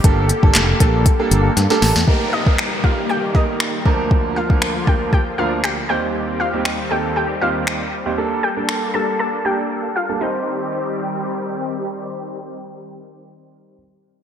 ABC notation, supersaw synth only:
X:1
M:4/4
L:1/8
Q:1/4=118
K:Cdor
V:1 name="Supersaw synth"
[D,B,GA]8 | [E,G,B,G]6- [E,G,B,G] [D,F,B,F]- | [D,F,B,F]6- [D,F,B,F] [E,G,CG]- | [E,G,CG]8 |
[B,DA]8 | [E,G,CG]8- | [E,G,CG]8 |]